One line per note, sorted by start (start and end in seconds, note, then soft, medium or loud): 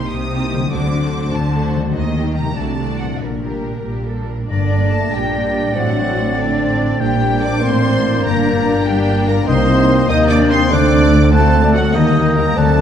0.00 0.63 C3 soft
0.00 0.66 G3 soft
0.00 0.29 A#3 soft
0.00 0.28 D#4 soft
0.00 0.68 D#4 soft
0.00 0.29 G4 soft
0.00 0.70 A#4 soft
0.00 0.29 C5 soft
0.09 0.63 C2 medium
0.09 0.63 C3 medium
0.09 0.71 D#6 medium
0.30 0.70 A#3 soft
0.30 0.70 D#4 soft
0.30 0.70 G4 soft
0.30 0.70 C5 soft
0.53 1.87 D3 medium
0.57 1.89 F#3 soft
0.62 1.91 C4 soft
0.66 1.94 A4 soft
0.70 1.25 D2 medium
0.70 1.25 D3 medium
0.70 0.90 A3 soft
0.70 0.90 D4 soft
0.70 0.90 F#4 soft
0.70 0.91 C5 soft
0.70 1.31 D6 medium
0.91 1.51 A3 soft
0.91 1.52 D4 medium
0.91 1.52 F#4 soft
0.91 1.51 C5 soft
1.32 1.87 D2 medium
1.32 1.87 D3 medium
1.32 1.73 A5 medium
1.53 1.93 A3 soft
1.53 1.93 D4 soft
1.53 1.93 F#4 medium
1.53 1.93 C5 medium
1.76 2.49 D#3 soft
1.80 2.51 G3 soft
1.85 2.54 A#3 soft
1.89 2.56 G4 soft
1.94 2.49 D#2 medium
1.94 2.49 D#3 medium
1.94 2.33 D#5 medium
2.15 2.56 G3 soft
2.15 2.56 G4 soft
2.15 2.56 A#4 soft
2.36 3.14 C3 soft
2.36 2.57 A#5 medium
2.43 3.16 A3 soft
2.48 3.11 D4 soft
2.52 3.20 F#4 soft
2.56 3.14 C2 medium
2.56 3.13 C3 medium
2.56 2.76 A3 soft
2.56 2.76 D4 soft
2.56 2.77 F#4 soft
2.56 2.77 D5 soft
2.56 2.99 A5 medium
2.77 3.20 A3 soft
2.77 3.20 D4 soft
2.77 3.20 F#4 soft
2.77 3.20 D5 soft
2.99 4.42 A#2 soft
2.99 3.21 F#5 medium
3.07 4.59 G3 soft
3.12 4.69 D4 soft
3.16 4.90 G4 soft
3.21 3.78 A#1 soft
3.21 3.77 A#2 soft
3.21 4.28 A#4 soft
3.42 4.05 G3 soft
3.42 4.05 D4 soft
3.42 3.80 G4 soft
3.42 3.80 A#4 soft
3.85 4.42 A#1 soft
3.85 4.42 A#2 soft
3.85 4.05 G4 soft
4.06 4.49 G3 soft
4.06 4.49 D4 soft
4.06 4.28 A4 soft
4.29 4.50 A#4 soft
4.49 5.08 G1 medium
4.49 5.08 G2 medium
4.49 5.77 G2 medium
4.49 4.88 D3 medium
4.49 5.08 A#3 soft
4.49 5.71 D4 medium
4.49 5.08 D4 medium
4.49 4.89 D4 medium
4.49 6.95 D5 medium
4.49 4.88 D5 medium
4.49 5.71 A#6 medium
4.60 5.64 G3 soft
4.71 5.53 D4 soft
4.81 5.43 A#4 soft
4.91 5.12 A3 medium
4.91 5.33 G4 soft
4.91 5.12 A4 medium
4.91 5.12 A5 medium
5.02 5.22 D5 soft
5.12 5.75 A#1 medium
5.12 5.75 A#2 medium
5.12 5.75 G3 medium
5.12 5.74 A#3 medium
5.12 5.74 D4 medium
5.12 5.75 G4 medium
5.12 5.75 G5 medium
5.23 6.26 D5 soft
5.44 5.77 A#4 soft
5.54 5.95 D4 soft
5.65 5.77 G3 soft
5.74 6.97 A1 medium
5.74 6.97 A2 medium
5.74 7.01 A2 medium
5.74 6.36 F#3 medium
5.74 7.63 C4 medium
5.74 6.37 C4 medium
5.74 6.36 D4 medium
5.74 6.36 F#4 medium
5.74 6.37 F#5 medium
5.74 7.01 A6 medium
5.86 6.88 C4 soft
5.97 6.78 D4 soft
6.07 6.68 A4 soft
6.17 6.57 C5 medium
6.28 6.47 D5 soft
6.37 6.98 D3 medium
6.37 6.98 C4 medium
6.37 6.99 D4 medium
6.37 6.98 D4 medium
6.37 6.99 D5 medium
6.37 7.01 A5 medium
6.49 7.50 D5 soft
6.58 7.01 C5 soft
6.69 7.01 A4 medium
6.79 7.19 D4 soft
6.90 7.01 C4 soft
6.99 7.61 A#1 medium
6.99 7.60 A#2 medium
6.99 8.26 A#2 medium
6.99 7.40 G3 medium
6.99 8.23 A#3 medium
6.99 8.22 D4 medium
6.99 7.40 G4 medium
6.99 9.44 D5 medium
6.99 7.40 G5 medium
6.99 9.20 G6 medium
7.10 8.13 A#3 soft
7.21 8.03 D4 medium
7.31 7.92 G4 medium
7.41 7.62 D4 medium
7.41 7.82 A#4 medium
7.41 7.62 D5 medium
7.41 7.62 D6 medium
7.52 7.72 D5 medium
7.61 8.24 A1 medium
7.61 8.24 A2 medium
7.61 9.47 A#3 medium
7.61 8.23 C4 medium
7.61 8.23 C5 medium
7.61 8.86 G5 medium
7.61 8.24 C6 loud
7.73 8.76 D5 medium
7.83 8.65 A#4 medium
7.93 8.55 G4 medium
8.04 8.44 D4 medium
8.14 8.34 A#3 medium
8.24 9.45 G1 medium
8.24 9.45 G2 medium
8.24 9.50 G2 medium
8.24 8.85 A#3 medium
8.24 8.85 D4 medium
8.24 8.86 A#4 medium
8.24 8.85 A#5 medium
8.35 9.36 A#3 medium
8.45 9.26 D4 medium
8.56 9.16 G4 medium
8.66 9.06 A#4 medium
8.77 8.96 D5 medium
8.86 9.26 G3 medium
8.86 9.46 A#3 medium
8.86 9.46 D4 medium
8.86 9.27 G4 medium
8.86 9.27 G5 medium
8.86 10.07 G5 medium
8.97 9.50 D5 medium
9.17 9.78 G4 medium
9.27 9.36 A#3 medium
9.27 9.49 D4 medium
9.27 9.48 A#4 medium
9.27 9.47 A#5 medium
9.37 9.57 A#3 medium
9.47 10.08 C2 medium
9.47 10.73 C3 medium
9.47 10.05 A#3 medium
9.47 10.08 A#3 medium
9.47 10.08 C4 medium
9.47 10.08 D#4 medium
9.47 10.10 C5 medium
9.47 10.05 D#5 medium
9.47 10.08 C6 medium
9.47 10.05 G6 medium
9.58 10.59 A#3 medium
9.68 10.49 D#4 medium
9.79 10.39 G4 medium
9.88 10.28 A#4 medium
9.99 10.18 D#5 medium
10.09 10.70 D#2 medium
10.09 10.72 A#3 medium
10.09 10.70 A#3 medium
10.09 10.39 D#4 medium
10.09 10.30 D#4 loud
10.09 10.30 D#5 loud
10.09 10.54 D#5 medium
10.09 10.72 G5 medium
10.09 10.17 D#6 loud
10.09 10.70 G6 medium
10.29 10.50 D4 medium
10.29 10.72 A#4 medium
10.29 10.50 D5 loud
10.29 10.37 D6 loud
10.40 10.70 D4 medium
10.40 10.72 G4 medium
10.50 10.71 C4 loud
10.50 10.72 D#4 medium
10.50 10.71 C5 medium
10.50 10.71 C6 loud
10.61 10.73 A#3 medium
10.71 11.95 D2 medium
10.71 11.96 D3 medium
10.71 11.32 A3 medium
10.71 11.31 A3 medium
10.71 11.31 C4 medium
10.71 11.32 D4 loud
10.71 11.31 C5 medium
10.71 11.31 D5 loud
10.71 11.32 D6 loud
10.71 11.31 F#6 medium
10.81 11.83 C4 soft
10.92 11.73 F#4 medium
11.12 11.52 C5 medium
11.23 11.42 F#5 medium
11.32 11.73 A3 medium
11.32 11.93 A3 medium
11.32 11.96 A3 medium
11.32 11.93 C4 medium
11.32 11.73 A4 medium
11.32 11.62 C5 medium
11.32 11.73 A5 loud
11.32 11.96 A5 medium
11.32 11.95 F#6 medium
11.43 11.96 F#5 medium
11.53 11.96 C5 medium
11.63 11.96 A4 medium
11.63 11.78 D5 medium
11.73 11.83 F#3 medium
11.73 11.96 F#4 medium
11.73 11.94 F#4 medium
11.73 11.94 F#5 medium
11.84 11.96 C4 medium
11.93 12.57 D#2 medium
11.93 12.35 D#3 medium
11.93 12.58 D#3 medium
11.93 12.57 G3 medium
11.93 12.57 A#3 medium
11.93 12.58 A#3 medium
11.93 12.36 D#4 medium
11.93 12.59 D#5 medium
11.93 12.36 D#5 medium
11.93 12.59 G6 medium
12.05 12.59 A#3 soft
12.16 12.36 A#4 medium
12.26 12.59 G4 medium
12.36 12.57 A#3 medium
12.36 12.57 A#4 medium
12.36 12.56 A#5 medium
12.47 12.59 A#5 medium
12.56 12.81 D2 medium
12.56 12.81 D3 medium
12.56 12.81 F#3 medium
12.56 12.81 A3 medium
12.56 12.81 C4 medium
12.56 12.81 A4 medium
12.56 12.81 D5 medium
12.56 12.81 A5 loud
12.56 12.81 F#6 medium
12.67 12.81 D4 soft